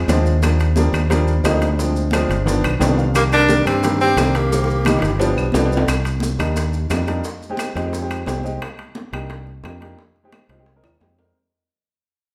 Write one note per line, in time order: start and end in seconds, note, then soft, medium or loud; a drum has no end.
0.00 0.26 G#3 medium
0.00 0.26 F4 medium
0.08 0.88 D#2 loud
0.08 0.32 F3 medium
0.08 0.33 G#3 medium
0.08 0.33 C4 medium
0.08 0.33 D4 loud
0.08 high bongo medium
0.08 low bongo medium
0.08 high conga medium
0.08 high timbale medium
0.08 low timbale medium
0.08 maracas medium
0.26 maracas soft
0.42 0.66 F3 medium
0.42 0.66 G3 medium
0.42 0.67 A#3 medium
0.42 0.67 D4 medium
0.42 high bongo medium
0.42 high conga soft
0.42 high timbale medium
0.42 claves medium
0.42 maracas medium
0.59 high conga soft
0.59 high timbale medium
0.59 maracas soft
0.76 1.00 F3 medium
0.76 1.00 G3 medium
0.76 1.01 A#3 medium
0.76 1.01 D4 loud
0.76 high bongo medium
0.76 high conga medium
0.76 low timbale medium
0.76 maracas medium
0.93 1.41 D#2 medium
0.93 high bongo soft
0.93 high conga soft
0.93 high timbale medium
0.93 claves medium
0.93 maracas soft
1.10 1.34 F3 loud
1.10 1.34 G3 medium
1.10 1.34 A#3 medium
1.10 1.35 D4 loud
1.10 high bongo medium
1.10 high conga soft
1.10 high timbale medium
1.10 maracas medium
1.27 high bongo soft
1.27 high conga soft
1.27 maracas soft
1.44 2.24 D2 medium
1.44 1.68 F3 loud
1.44 1.68 G3 medium
1.44 1.69 A#3 medium
1.44 1.69 D#4 loud
1.44 high bongo medium
1.44 low bongo medium
1.44 high conga soft
1.44 high timbale medium
1.44 low timbale medium
1.44 claves medium
1.44 maracas medium
1.61 high bongo soft
1.61 high conga soft
1.61 high timbale medium
1.61 maracas soft
1.78 2.03 F3 medium
1.78 2.03 G#3 medium
1.78 2.03 C4 medium
1.78 2.03 D4 medium
1.78 high bongo medium
1.78 high conga soft
1.78 maracas medium
1.95 high conga soft
1.95 maracas soft
2.11 2.37 F3 loud
2.11 2.37 G#3 medium
2.11 2.37 C4 medium
2.11 2.37 D4 medium
2.11 high bongo medium
2.11 high conga medium
2.11 high timbale medium
2.11 low timbale medium
2.11 claves medium
2.11 maracas medium
2.29 2.61 G1 medium
2.29 high bongo soft
2.29 high conga soft
2.29 high timbale medium
2.29 maracas soft
2.45 2.70 D#3 medium
2.45 2.70 F3 medium
2.45 2.70 B3 medium
2.45 2.71 D4 loud
2.45 high bongo medium
2.45 high conga soft
2.45 maracas medium
2.63 2.80 B1 medium
2.63 high bongo soft
2.63 high conga soft
2.63 high timbale medium
2.63 claves medium
2.63 maracas soft
2.79 3.60 C2 loud
2.79 3.04 D#3 loud
2.79 3.04 F3 medium
2.79 3.04 B3 medium
2.79 3.04 D4 loud
2.79 2.96 G5 medium
2.79 high bongo medium
2.79 low bongo medium
2.79 high conga medium
2.79 high timbale medium
2.79 low timbale medium
2.79 maracas medium
2.98 3.14 F5 medium
2.98 maracas soft
3.13 3.38 D#3 medium
3.13 3.38 G3 medium
3.13 3.39 A#3 medium
3.13 3.23 A#3 medium
3.13 3.39 D4 medium
3.13 3.21 G4 medium
3.13 high bongo medium
3.13 high conga soft
3.13 high timbale medium
3.13 claves medium
3.13 maracas medium
3.32 3.64 D4 loud
3.32 3.64 A#4 medium
3.32 high conga soft
3.32 high timbale medium
3.32 maracas soft
3.48 3.73 D#3 medium
3.48 3.73 G3 medium
3.48 3.73 A#3 medium
3.48 3.73 D4 medium
3.48 high bongo medium
3.48 high conga medium
3.48 low timbale medium
3.48 maracas medium
3.66 4.14 G2 medium
3.66 3.98 C4 medium
3.66 3.99 G4 medium
3.66 high bongo soft
3.66 high conga soft
3.66 high timbale medium
3.66 claves medium
3.66 maracas soft
3.83 4.08 D#3 medium
3.83 4.08 G3 medium
3.83 4.08 A#3 medium
3.83 4.08 D4 medium
3.83 high bongo medium
3.83 high conga soft
3.83 high timbale medium
3.83 maracas medium
4.01 4.38 C4 loud
4.01 4.35 G4 medium
4.01 high bongo soft
4.01 high conga soft
4.01 maracas soft
4.17 4.97 C2 medium
4.17 4.42 D#3 medium
4.17 4.42 G3 medium
4.17 4.42 A#3 medium
4.17 4.42 D4 medium
4.17 high bongo medium
4.17 low bongo medium
4.17 high conga soft
4.17 high timbale medium
4.17 low timbale medium
4.17 claves medium
4.17 maracas medium
4.35 5.21 A#3 medium
4.35 5.54 G4 medium
4.35 high bongo soft
4.35 high conga soft
4.35 high timbale medium
4.35 maracas soft
4.51 4.76 D#3 medium
4.51 4.76 G3 medium
4.51 4.76 A#3 medium
4.51 4.77 C4 medium
4.51 high bongo medium
4.51 high conga soft
4.51 maracas medium
4.64 high bongo medium
4.64 high conga soft
4.70 maracas soft
4.85 5.10 D#3 loud
4.85 5.10 G3 medium
4.85 5.11 A#3 medium
4.85 5.11 D#4 loud
4.85 high conga medium
4.85 high timbale loud
4.85 low timbale medium
4.85 claves medium
4.85 maracas medium
4.99 low bongo medium
4.99 high conga soft
4.99 high timbale medium
5.03 5.34 G1 medium
5.03 maracas soft
5.10 low bongo medium
5.18 5.43 F3 loud
5.18 5.44 G3 medium
5.18 5.44 B3 medium
5.18 5.44 D4 loud
5.18 high conga soft
5.18 high timbale medium
5.18 maracas medium
5.36 5.53 B1 medium
5.36 high conga soft
5.36 claves medium
5.36 maracas soft
5.52 5.84 C2 medium
5.52 5.78 F3 medium
5.52 5.78 G3 medium
5.52 5.78 B3 medium
5.52 5.78 D4 loud
5.52 low bongo medium
5.52 high conga medium
5.52 low timbale loud
5.52 maracas medium
5.66 low timbale medium
5.72 maracas soft
5.77 low bongo loud
5.77 low timbale medium
5.87 6.36 C2 medium
5.87 high bongo medium
5.87 high conga soft
5.87 high timbale medium
5.87 claves medium
5.87 maracas medium
6.05 high conga soft
6.05 high timbale medium
6.05 maracas soft
6.20 high bongo medium
6.20 high conga medium
6.20 low timbale medium
6.20 maracas medium
6.38 6.87 D#2 medium
6.38 6.75 G3 medium
6.38 6.75 A#3 medium
6.38 6.75 D4 medium
6.38 6.75 D#4 medium
6.38 high bongo soft
6.38 high conga soft
6.38 high timbale medium
6.38 claves medium
6.38 maracas soft
6.56 high bongo medium
6.56 high conga soft
6.56 high timbale medium
6.56 maracas medium
6.73 high bongo soft
6.73 high conga soft
6.73 maracas soft
6.90 7.21 F2 medium
6.90 7.02 G3 medium
6.90 7.03 A#3 medium
6.90 7.02 D4 medium
6.90 7.02 D#4 medium
6.90 high bongo medium
6.90 low bongo medium
6.90 high conga soft
6.90 high timbale medium
6.90 low timbale medium
6.90 claves medium
6.90 maracas medium
7.07 7.24 G3 medium
7.07 7.25 A#3 medium
7.07 7.25 D4 medium
7.07 7.25 D#4 medium
7.07 high bongo soft
7.07 high conga soft
7.07 high timbale medium
7.07 maracas soft
7.23 high bongo medium
7.23 high conga soft
7.23 maracas medium
7.41 high conga soft
7.41 maracas soft
7.50 7.68 G#3 medium
7.50 7.68 C4 medium
7.50 7.68 D#4 medium
7.50 7.68 G4 loud
7.57 high bongo medium
7.57 high conga medium
7.57 high timbale loud
7.57 low timbale medium
7.57 claves medium
7.57 maracas medium
7.75 8.23 F2 medium
7.75 7.82 G#3 medium
7.75 7.82 C4 medium
7.75 7.82 D#4 medium
7.75 7.82 G4 medium
7.75 high bongo soft
7.75 high conga soft
7.75 high timbale medium
7.75 maracas soft
7.84 7.96 G#3 medium
7.84 7.97 C4 medium
7.84 7.97 D#4 medium
7.84 7.97 G4 medium
7.92 high bongo medium
7.92 high conga soft
7.92 maracas medium
8.01 8.19 G#3 medium
8.01 8.20 C4 medium
8.01 8.20 D#4 medium
8.01 8.20 G4 medium
8.10 high bongo soft
8.10 high conga soft
8.10 high timbale medium
8.10 claves medium
8.10 maracas soft
8.25 8.57 C2 medium
8.25 8.38 G#3 medium
8.25 8.39 C4 medium
8.25 8.39 D#4 medium
8.25 8.39 G4 medium
8.25 high bongo medium
8.25 low bongo medium
8.25 high conga medium
8.25 high timbale medium
8.25 low timbale medium
8.25 maracas medium
8.44 8.61 G#3 medium
8.44 8.61 C4 medium
8.44 8.61 D#4 medium
8.44 8.62 G4 medium
8.44 high conga medium
8.44 maracas soft
8.60 high bongo medium
8.60 high conga soft
8.60 high timbale medium
8.60 claves medium
8.78 high conga soft
8.78 high timbale medium
8.95 high bongo medium
8.95 high conga medium
8.95 low timbale medium
9.13 9.60 C2 medium
9.13 9.49 A#3 medium
9.13 9.49 D4 medium
9.13 9.49 D#4 medium
9.13 9.49 G4 medium
9.13 high bongo soft
9.13 high conga soft
9.13 high timbale medium
9.13 claves medium
9.30 high bongo medium
9.30 high conga soft
9.30 high timbale medium
9.47 high bongo soft
9.47 high conga soft
9.64 9.94 F2 medium
9.64 9.76 A#3 medium
9.64 9.76 D4 medium
9.64 9.76 D#4 medium
9.64 9.77 G4 medium
9.64 high bongo medium
9.64 low bongo medium
9.64 high conga soft
9.64 high timbale medium
9.64 low timbale medium
9.64 claves medium
9.81 9.98 A#3 medium
9.81 9.98 D4 medium
9.81 9.99 D#4 medium
9.81 9.99 G4 medium
9.81 high bongo soft
9.81 high conga soft
9.81 high timbale medium
9.99 high bongo medium
9.99 high conga soft
10.16 high conga soft
10.24 10.42 G#3 medium
10.24 10.42 C4 medium
10.24 10.42 D#4 medium
10.24 10.42 G4 medium
10.32 high bongo medium
10.32 high conga medium
10.32 high timbale medium
10.32 low timbale medium
10.32 claves medium
10.49 10.81 C2 medium
10.49 10.56 G#3 medium
10.49 10.56 C4 medium
10.49 10.56 D#4 medium
10.49 10.56 F4 medium
10.49 high bongo soft
10.49 high conga soft
10.49 high timbale medium
10.58 10.70 G#3 medium
10.58 10.70 C4 medium
10.58 10.71 D#4 medium
10.58 10.71 G4 medium
10.66 high bongo medium
10.66 high conga soft
10.76 10.94 G#3 medium
10.76 10.93 C4 medium
10.76 10.93 D#4 medium
10.76 10.94 A#4 medium
10.83 10.99 D#2 medium
10.83 high bongo soft
10.83 high conga soft
10.83 high timbale medium
10.83 claves medium
11.00 11.31 F2 medium
11.00 11.12 G#3 medium
11.00 11.13 C4 medium
11.00 11.13 D#4 medium
11.00 11.13 G4 medium
11.00 high bongo medium
11.00 low bongo medium
11.00 high conga medium
11.00 low timbale medium
11.18 11.35 G#3 medium
11.18 11.35 C4 medium
11.18 11.35 D#4 medium
11.18 11.36 A#4 medium
11.18 low timbale medium